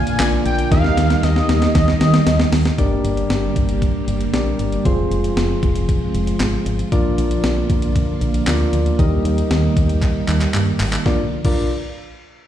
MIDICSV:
0, 0, Header, 1, 6, 480
1, 0, Start_track
1, 0, Tempo, 517241
1, 664, Time_signature, 4, 2, 24, 8
1, 11576, End_track
2, 0, Start_track
2, 0, Title_t, "Analog synth lead"
2, 0, Program_c, 0, 81
2, 0, Note_on_c, 0, 80, 111
2, 182, Note_off_c, 0, 80, 0
2, 187, Note_on_c, 0, 80, 109
2, 295, Note_off_c, 0, 80, 0
2, 425, Note_on_c, 0, 79, 112
2, 647, Note_off_c, 0, 79, 0
2, 666, Note_on_c, 0, 77, 111
2, 1147, Note_on_c, 0, 75, 97
2, 1161, Note_off_c, 0, 77, 0
2, 1622, Note_off_c, 0, 75, 0
2, 1627, Note_on_c, 0, 75, 91
2, 2308, Note_off_c, 0, 75, 0
2, 11576, End_track
3, 0, Start_track
3, 0, Title_t, "Synth keys"
3, 0, Program_c, 1, 88
3, 0, Note_on_c, 1, 62, 72
3, 0, Note_on_c, 1, 65, 61
3, 0, Note_on_c, 1, 70, 62
3, 0, Note_on_c, 1, 74, 77
3, 155, Note_off_c, 1, 70, 0
3, 156, Note_off_c, 1, 62, 0
3, 156, Note_off_c, 1, 65, 0
3, 156, Note_off_c, 1, 74, 0
3, 186, Note_on_c, 1, 65, 50
3, 187, Note_on_c, 1, 62, 53
3, 187, Note_on_c, 1, 70, 51
3, 188, Note_on_c, 1, 74, 60
3, 654, Note_off_c, 1, 70, 0
3, 664, Note_on_c, 1, 67, 65
3, 665, Note_off_c, 1, 62, 0
3, 665, Note_off_c, 1, 65, 0
3, 665, Note_on_c, 1, 70, 62
3, 665, Note_on_c, 1, 75, 78
3, 666, Note_off_c, 1, 74, 0
3, 666, Note_on_c, 1, 63, 67
3, 2547, Note_off_c, 1, 67, 0
3, 2547, Note_off_c, 1, 70, 0
3, 2547, Note_off_c, 1, 75, 0
3, 2548, Note_off_c, 1, 63, 0
3, 2586, Note_on_c, 1, 62, 77
3, 2586, Note_on_c, 1, 70, 68
3, 2586, Note_on_c, 1, 74, 83
3, 2587, Note_on_c, 1, 67, 69
3, 3996, Note_off_c, 1, 62, 0
3, 3996, Note_off_c, 1, 70, 0
3, 3996, Note_off_c, 1, 74, 0
3, 3997, Note_off_c, 1, 67, 0
3, 4025, Note_on_c, 1, 62, 60
3, 4025, Note_on_c, 1, 74, 64
3, 4026, Note_on_c, 1, 67, 54
3, 4026, Note_on_c, 1, 70, 55
3, 4504, Note_on_c, 1, 60, 77
3, 4504, Note_on_c, 1, 68, 72
3, 4504, Note_on_c, 1, 72, 84
3, 4505, Note_off_c, 1, 62, 0
3, 4505, Note_off_c, 1, 67, 0
3, 4505, Note_off_c, 1, 70, 0
3, 4505, Note_off_c, 1, 74, 0
3, 4505, Note_on_c, 1, 65, 70
3, 6387, Note_off_c, 1, 60, 0
3, 6387, Note_off_c, 1, 65, 0
3, 6387, Note_off_c, 1, 68, 0
3, 6387, Note_off_c, 1, 72, 0
3, 6422, Note_on_c, 1, 62, 81
3, 6422, Note_on_c, 1, 74, 87
3, 6423, Note_on_c, 1, 65, 72
3, 6423, Note_on_c, 1, 70, 70
3, 7834, Note_off_c, 1, 62, 0
3, 7834, Note_off_c, 1, 65, 0
3, 7834, Note_off_c, 1, 70, 0
3, 7834, Note_off_c, 1, 74, 0
3, 7863, Note_on_c, 1, 70, 57
3, 7864, Note_on_c, 1, 62, 62
3, 7865, Note_on_c, 1, 65, 58
3, 7865, Note_on_c, 1, 74, 68
3, 8332, Note_off_c, 1, 70, 0
3, 8343, Note_on_c, 1, 63, 76
3, 8343, Note_on_c, 1, 67, 71
3, 8343, Note_on_c, 1, 75, 85
3, 8344, Note_off_c, 1, 62, 0
3, 8344, Note_off_c, 1, 65, 0
3, 8344, Note_off_c, 1, 74, 0
3, 8344, Note_on_c, 1, 70, 72
3, 10226, Note_off_c, 1, 67, 0
3, 10226, Note_off_c, 1, 75, 0
3, 10227, Note_off_c, 1, 63, 0
3, 10227, Note_off_c, 1, 70, 0
3, 10264, Note_on_c, 1, 62, 83
3, 10264, Note_on_c, 1, 74, 89
3, 10265, Note_on_c, 1, 65, 73
3, 10265, Note_on_c, 1, 70, 73
3, 10398, Note_off_c, 1, 62, 0
3, 10398, Note_off_c, 1, 65, 0
3, 10398, Note_off_c, 1, 70, 0
3, 10398, Note_off_c, 1, 74, 0
3, 10623, Note_on_c, 1, 62, 82
3, 10623, Note_on_c, 1, 65, 79
3, 10623, Note_on_c, 1, 70, 78
3, 10623, Note_on_c, 1, 74, 95
3, 10846, Note_off_c, 1, 62, 0
3, 10846, Note_off_c, 1, 65, 0
3, 10846, Note_off_c, 1, 70, 0
3, 10847, Note_off_c, 1, 74, 0
3, 11576, End_track
4, 0, Start_track
4, 0, Title_t, "String machine"
4, 0, Program_c, 2, 50
4, 0, Note_on_c, 2, 50, 85
4, 0, Note_on_c, 2, 53, 77
4, 0, Note_on_c, 2, 58, 79
4, 0, Note_on_c, 2, 65, 90
4, 628, Note_off_c, 2, 65, 0
4, 644, Note_off_c, 2, 50, 0
4, 644, Note_off_c, 2, 53, 0
4, 663, Note_on_c, 2, 51, 86
4, 663, Note_on_c, 2, 55, 75
4, 664, Note_on_c, 2, 67, 90
4, 2546, Note_off_c, 2, 58, 0
4, 2564, Note_off_c, 2, 51, 0
4, 2564, Note_off_c, 2, 55, 0
4, 2565, Note_off_c, 2, 67, 0
4, 2585, Note_on_c, 2, 50, 78
4, 2585, Note_on_c, 2, 55, 75
4, 2586, Note_on_c, 2, 58, 71
4, 2586, Note_on_c, 2, 67, 86
4, 4485, Note_off_c, 2, 50, 0
4, 4485, Note_off_c, 2, 55, 0
4, 4486, Note_off_c, 2, 58, 0
4, 4486, Note_off_c, 2, 67, 0
4, 4501, Note_on_c, 2, 56, 76
4, 4501, Note_on_c, 2, 65, 89
4, 4502, Note_on_c, 2, 48, 81
4, 4502, Note_on_c, 2, 53, 72
4, 6403, Note_off_c, 2, 56, 0
4, 6403, Note_off_c, 2, 65, 0
4, 6404, Note_off_c, 2, 48, 0
4, 6422, Note_on_c, 2, 58, 74
4, 6423, Note_on_c, 2, 50, 83
4, 6423, Note_on_c, 2, 65, 92
4, 8306, Note_off_c, 2, 53, 0
4, 8324, Note_off_c, 2, 50, 0
4, 8324, Note_off_c, 2, 65, 0
4, 8341, Note_on_c, 2, 51, 84
4, 8342, Note_on_c, 2, 55, 74
4, 8342, Note_on_c, 2, 67, 91
4, 10226, Note_off_c, 2, 58, 0
4, 10243, Note_off_c, 2, 51, 0
4, 10243, Note_off_c, 2, 67, 0
4, 10244, Note_off_c, 2, 55, 0
4, 10264, Note_on_c, 2, 50, 73
4, 10264, Note_on_c, 2, 53, 67
4, 10264, Note_on_c, 2, 58, 67
4, 10264, Note_on_c, 2, 65, 80
4, 10487, Note_off_c, 2, 50, 0
4, 10487, Note_off_c, 2, 53, 0
4, 10487, Note_off_c, 2, 58, 0
4, 10487, Note_off_c, 2, 65, 0
4, 11576, End_track
5, 0, Start_track
5, 0, Title_t, "FM bass"
5, 0, Program_c, 3, 39
5, 0, Note_on_c, 3, 46, 99
5, 112, Note_off_c, 3, 46, 0
5, 183, Note_on_c, 3, 34, 104
5, 352, Note_off_c, 3, 34, 0
5, 424, Note_on_c, 3, 34, 93
5, 592, Note_off_c, 3, 34, 0
5, 664, Note_on_c, 3, 39, 113
5, 832, Note_off_c, 3, 39, 0
5, 904, Note_on_c, 3, 39, 100
5, 1072, Note_off_c, 3, 39, 0
5, 1144, Note_on_c, 3, 39, 99
5, 1312, Note_off_c, 3, 39, 0
5, 1384, Note_on_c, 3, 39, 100
5, 1552, Note_off_c, 3, 39, 0
5, 1625, Note_on_c, 3, 39, 110
5, 1793, Note_off_c, 3, 39, 0
5, 1865, Note_on_c, 3, 51, 112
5, 2032, Note_off_c, 3, 51, 0
5, 2103, Note_on_c, 3, 39, 109
5, 2271, Note_off_c, 3, 39, 0
5, 2343, Note_on_c, 3, 39, 108
5, 2511, Note_off_c, 3, 39, 0
5, 2584, Note_on_c, 3, 31, 104
5, 2752, Note_off_c, 3, 31, 0
5, 2823, Note_on_c, 3, 31, 105
5, 2991, Note_off_c, 3, 31, 0
5, 3063, Note_on_c, 3, 31, 100
5, 3231, Note_off_c, 3, 31, 0
5, 3304, Note_on_c, 3, 31, 98
5, 3556, Note_off_c, 3, 31, 0
5, 3783, Note_on_c, 3, 31, 96
5, 3951, Note_off_c, 3, 31, 0
5, 4022, Note_on_c, 3, 34, 99
5, 4190, Note_off_c, 3, 34, 0
5, 4262, Note_on_c, 3, 31, 86
5, 4431, Note_off_c, 3, 31, 0
5, 4504, Note_on_c, 3, 29, 107
5, 4672, Note_off_c, 3, 29, 0
5, 4742, Note_on_c, 3, 29, 100
5, 4910, Note_off_c, 3, 29, 0
5, 4981, Note_on_c, 3, 29, 102
5, 5150, Note_off_c, 3, 29, 0
5, 5224, Note_on_c, 3, 29, 96
5, 5476, Note_off_c, 3, 29, 0
5, 5702, Note_on_c, 3, 29, 98
5, 5871, Note_off_c, 3, 29, 0
5, 5942, Note_on_c, 3, 32, 100
5, 6110, Note_off_c, 3, 32, 0
5, 6181, Note_on_c, 3, 32, 96
5, 6350, Note_off_c, 3, 32, 0
5, 6424, Note_on_c, 3, 34, 114
5, 6592, Note_off_c, 3, 34, 0
5, 6663, Note_on_c, 3, 34, 102
5, 6831, Note_off_c, 3, 34, 0
5, 6903, Note_on_c, 3, 34, 101
5, 7071, Note_off_c, 3, 34, 0
5, 7143, Note_on_c, 3, 34, 100
5, 7395, Note_off_c, 3, 34, 0
5, 7622, Note_on_c, 3, 34, 103
5, 7791, Note_off_c, 3, 34, 0
5, 7862, Note_on_c, 3, 38, 99
5, 8030, Note_off_c, 3, 38, 0
5, 8102, Note_on_c, 3, 38, 87
5, 8271, Note_off_c, 3, 38, 0
5, 8343, Note_on_c, 3, 39, 107
5, 8511, Note_off_c, 3, 39, 0
5, 8581, Note_on_c, 3, 39, 108
5, 8750, Note_off_c, 3, 39, 0
5, 8823, Note_on_c, 3, 39, 105
5, 8991, Note_off_c, 3, 39, 0
5, 9063, Note_on_c, 3, 39, 98
5, 9315, Note_off_c, 3, 39, 0
5, 9544, Note_on_c, 3, 39, 101
5, 9712, Note_off_c, 3, 39, 0
5, 9783, Note_on_c, 3, 43, 96
5, 9951, Note_off_c, 3, 43, 0
5, 10024, Note_on_c, 3, 32, 91
5, 10192, Note_off_c, 3, 32, 0
5, 10262, Note_on_c, 3, 34, 101
5, 10397, Note_off_c, 3, 34, 0
5, 10622, Note_on_c, 3, 34, 103
5, 10846, Note_off_c, 3, 34, 0
5, 11576, End_track
6, 0, Start_track
6, 0, Title_t, "Drums"
6, 63, Note_on_c, 9, 42, 70
6, 156, Note_off_c, 9, 42, 0
6, 183, Note_on_c, 9, 38, 127
6, 183, Note_on_c, 9, 39, 110
6, 185, Note_on_c, 9, 42, 82
6, 276, Note_off_c, 9, 38, 0
6, 276, Note_off_c, 9, 39, 0
6, 278, Note_off_c, 9, 42, 0
6, 423, Note_on_c, 9, 42, 81
6, 516, Note_off_c, 9, 42, 0
6, 543, Note_on_c, 9, 42, 57
6, 636, Note_off_c, 9, 42, 0
6, 664, Note_on_c, 9, 36, 126
6, 664, Note_on_c, 9, 38, 66
6, 664, Note_on_c, 9, 42, 74
6, 757, Note_off_c, 9, 36, 0
6, 757, Note_off_c, 9, 38, 0
6, 757, Note_off_c, 9, 42, 0
6, 783, Note_on_c, 9, 38, 60
6, 876, Note_off_c, 9, 38, 0
6, 904, Note_on_c, 9, 38, 74
6, 906, Note_on_c, 9, 42, 77
6, 997, Note_off_c, 9, 38, 0
6, 999, Note_off_c, 9, 42, 0
6, 1024, Note_on_c, 9, 38, 67
6, 1025, Note_on_c, 9, 42, 62
6, 1116, Note_off_c, 9, 38, 0
6, 1117, Note_off_c, 9, 42, 0
6, 1145, Note_on_c, 9, 38, 80
6, 1145, Note_on_c, 9, 42, 73
6, 1237, Note_off_c, 9, 42, 0
6, 1238, Note_off_c, 9, 38, 0
6, 1264, Note_on_c, 9, 38, 70
6, 1357, Note_off_c, 9, 38, 0
6, 1384, Note_on_c, 9, 38, 89
6, 1384, Note_on_c, 9, 42, 72
6, 1477, Note_off_c, 9, 38, 0
6, 1477, Note_off_c, 9, 42, 0
6, 1502, Note_on_c, 9, 42, 61
6, 1504, Note_on_c, 9, 38, 81
6, 1594, Note_off_c, 9, 42, 0
6, 1597, Note_off_c, 9, 38, 0
6, 1624, Note_on_c, 9, 38, 98
6, 1625, Note_on_c, 9, 36, 101
6, 1626, Note_on_c, 9, 42, 72
6, 1717, Note_off_c, 9, 38, 0
6, 1718, Note_off_c, 9, 36, 0
6, 1718, Note_off_c, 9, 42, 0
6, 1745, Note_on_c, 9, 38, 84
6, 1837, Note_off_c, 9, 38, 0
6, 1864, Note_on_c, 9, 38, 100
6, 1864, Note_on_c, 9, 42, 74
6, 1957, Note_off_c, 9, 38, 0
6, 1957, Note_off_c, 9, 42, 0
6, 1983, Note_on_c, 9, 42, 71
6, 1984, Note_on_c, 9, 38, 93
6, 2076, Note_off_c, 9, 42, 0
6, 2077, Note_off_c, 9, 38, 0
6, 2103, Note_on_c, 9, 38, 109
6, 2105, Note_on_c, 9, 42, 81
6, 2196, Note_off_c, 9, 38, 0
6, 2198, Note_off_c, 9, 42, 0
6, 2223, Note_on_c, 9, 38, 103
6, 2316, Note_off_c, 9, 38, 0
6, 2342, Note_on_c, 9, 46, 81
6, 2344, Note_on_c, 9, 38, 117
6, 2435, Note_off_c, 9, 46, 0
6, 2436, Note_off_c, 9, 38, 0
6, 2463, Note_on_c, 9, 42, 55
6, 2464, Note_on_c, 9, 38, 100
6, 2556, Note_off_c, 9, 42, 0
6, 2557, Note_off_c, 9, 38, 0
6, 2584, Note_on_c, 9, 36, 118
6, 2584, Note_on_c, 9, 42, 72
6, 2677, Note_off_c, 9, 36, 0
6, 2677, Note_off_c, 9, 42, 0
6, 2826, Note_on_c, 9, 42, 73
6, 2919, Note_off_c, 9, 42, 0
6, 2945, Note_on_c, 9, 42, 58
6, 3037, Note_off_c, 9, 42, 0
6, 3064, Note_on_c, 9, 38, 107
6, 3064, Note_on_c, 9, 42, 67
6, 3156, Note_off_c, 9, 38, 0
6, 3156, Note_off_c, 9, 42, 0
6, 3304, Note_on_c, 9, 36, 103
6, 3304, Note_on_c, 9, 42, 67
6, 3396, Note_off_c, 9, 36, 0
6, 3397, Note_off_c, 9, 42, 0
6, 3422, Note_on_c, 9, 42, 56
6, 3515, Note_off_c, 9, 42, 0
6, 3544, Note_on_c, 9, 36, 95
6, 3546, Note_on_c, 9, 42, 72
6, 3637, Note_off_c, 9, 36, 0
6, 3639, Note_off_c, 9, 42, 0
6, 3785, Note_on_c, 9, 42, 71
6, 3878, Note_off_c, 9, 42, 0
6, 3903, Note_on_c, 9, 42, 64
6, 3996, Note_off_c, 9, 42, 0
6, 4024, Note_on_c, 9, 38, 120
6, 4026, Note_on_c, 9, 42, 77
6, 4117, Note_off_c, 9, 38, 0
6, 4119, Note_off_c, 9, 42, 0
6, 4262, Note_on_c, 9, 42, 79
6, 4355, Note_off_c, 9, 42, 0
6, 4384, Note_on_c, 9, 42, 52
6, 4477, Note_off_c, 9, 42, 0
6, 4504, Note_on_c, 9, 36, 116
6, 4505, Note_on_c, 9, 42, 71
6, 4597, Note_off_c, 9, 36, 0
6, 4598, Note_off_c, 9, 42, 0
6, 4747, Note_on_c, 9, 42, 73
6, 4840, Note_off_c, 9, 42, 0
6, 4865, Note_on_c, 9, 42, 60
6, 4958, Note_off_c, 9, 42, 0
6, 4984, Note_on_c, 9, 38, 109
6, 4984, Note_on_c, 9, 42, 69
6, 5076, Note_off_c, 9, 42, 0
6, 5077, Note_off_c, 9, 38, 0
6, 5223, Note_on_c, 9, 36, 102
6, 5224, Note_on_c, 9, 42, 67
6, 5316, Note_off_c, 9, 36, 0
6, 5316, Note_off_c, 9, 42, 0
6, 5341, Note_on_c, 9, 42, 59
6, 5433, Note_off_c, 9, 42, 0
6, 5464, Note_on_c, 9, 36, 97
6, 5465, Note_on_c, 9, 42, 71
6, 5556, Note_off_c, 9, 36, 0
6, 5557, Note_off_c, 9, 42, 0
6, 5703, Note_on_c, 9, 42, 74
6, 5796, Note_off_c, 9, 42, 0
6, 5822, Note_on_c, 9, 42, 67
6, 5915, Note_off_c, 9, 42, 0
6, 5943, Note_on_c, 9, 38, 122
6, 5943, Note_on_c, 9, 39, 98
6, 5945, Note_on_c, 9, 42, 78
6, 6035, Note_off_c, 9, 38, 0
6, 6035, Note_off_c, 9, 39, 0
6, 6037, Note_off_c, 9, 42, 0
6, 6182, Note_on_c, 9, 42, 78
6, 6275, Note_off_c, 9, 42, 0
6, 6303, Note_on_c, 9, 42, 51
6, 6396, Note_off_c, 9, 42, 0
6, 6423, Note_on_c, 9, 36, 114
6, 6423, Note_on_c, 9, 42, 71
6, 6516, Note_off_c, 9, 36, 0
6, 6516, Note_off_c, 9, 42, 0
6, 6665, Note_on_c, 9, 42, 75
6, 6758, Note_off_c, 9, 42, 0
6, 6783, Note_on_c, 9, 42, 61
6, 6876, Note_off_c, 9, 42, 0
6, 6902, Note_on_c, 9, 38, 107
6, 6902, Note_on_c, 9, 42, 71
6, 6995, Note_off_c, 9, 38, 0
6, 6995, Note_off_c, 9, 42, 0
6, 7142, Note_on_c, 9, 42, 67
6, 7143, Note_on_c, 9, 36, 102
6, 7235, Note_off_c, 9, 42, 0
6, 7236, Note_off_c, 9, 36, 0
6, 7260, Note_on_c, 9, 42, 57
6, 7352, Note_off_c, 9, 42, 0
6, 7383, Note_on_c, 9, 36, 97
6, 7383, Note_on_c, 9, 42, 72
6, 7476, Note_off_c, 9, 36, 0
6, 7476, Note_off_c, 9, 42, 0
6, 7622, Note_on_c, 9, 42, 72
6, 7715, Note_off_c, 9, 42, 0
6, 7742, Note_on_c, 9, 42, 67
6, 7835, Note_off_c, 9, 42, 0
6, 7862, Note_on_c, 9, 38, 123
6, 7862, Note_on_c, 9, 39, 101
6, 7864, Note_on_c, 9, 42, 81
6, 7955, Note_off_c, 9, 38, 0
6, 7955, Note_off_c, 9, 39, 0
6, 7957, Note_off_c, 9, 42, 0
6, 8101, Note_on_c, 9, 42, 74
6, 8194, Note_off_c, 9, 42, 0
6, 8223, Note_on_c, 9, 42, 52
6, 8316, Note_off_c, 9, 42, 0
6, 8343, Note_on_c, 9, 36, 119
6, 8343, Note_on_c, 9, 42, 72
6, 8436, Note_off_c, 9, 36, 0
6, 8436, Note_off_c, 9, 42, 0
6, 8586, Note_on_c, 9, 42, 75
6, 8678, Note_off_c, 9, 42, 0
6, 8705, Note_on_c, 9, 42, 61
6, 8798, Note_off_c, 9, 42, 0
6, 8823, Note_on_c, 9, 38, 108
6, 8823, Note_on_c, 9, 42, 68
6, 8916, Note_off_c, 9, 38, 0
6, 8916, Note_off_c, 9, 42, 0
6, 9063, Note_on_c, 9, 36, 103
6, 9064, Note_on_c, 9, 42, 71
6, 9156, Note_off_c, 9, 36, 0
6, 9157, Note_off_c, 9, 42, 0
6, 9181, Note_on_c, 9, 42, 58
6, 9274, Note_off_c, 9, 42, 0
6, 9303, Note_on_c, 9, 36, 96
6, 9303, Note_on_c, 9, 39, 61
6, 9304, Note_on_c, 9, 42, 72
6, 9396, Note_off_c, 9, 36, 0
6, 9396, Note_off_c, 9, 39, 0
6, 9397, Note_off_c, 9, 42, 0
6, 9544, Note_on_c, 9, 39, 72
6, 9544, Note_on_c, 9, 42, 75
6, 9637, Note_off_c, 9, 39, 0
6, 9637, Note_off_c, 9, 42, 0
6, 9663, Note_on_c, 9, 42, 68
6, 9664, Note_on_c, 9, 39, 71
6, 9756, Note_off_c, 9, 42, 0
6, 9757, Note_off_c, 9, 39, 0
6, 9784, Note_on_c, 9, 39, 90
6, 9786, Note_on_c, 9, 42, 79
6, 9877, Note_off_c, 9, 39, 0
6, 9878, Note_off_c, 9, 42, 0
6, 10022, Note_on_c, 9, 46, 79
6, 10024, Note_on_c, 9, 39, 102
6, 10115, Note_off_c, 9, 46, 0
6, 10116, Note_off_c, 9, 39, 0
6, 10143, Note_on_c, 9, 39, 95
6, 10143, Note_on_c, 9, 42, 55
6, 10236, Note_off_c, 9, 39, 0
6, 10236, Note_off_c, 9, 42, 0
6, 10262, Note_on_c, 9, 36, 107
6, 10262, Note_on_c, 9, 38, 86
6, 10355, Note_off_c, 9, 36, 0
6, 10355, Note_off_c, 9, 38, 0
6, 10621, Note_on_c, 9, 49, 91
6, 10623, Note_on_c, 9, 36, 109
6, 10714, Note_off_c, 9, 49, 0
6, 10715, Note_off_c, 9, 36, 0
6, 11576, End_track
0, 0, End_of_file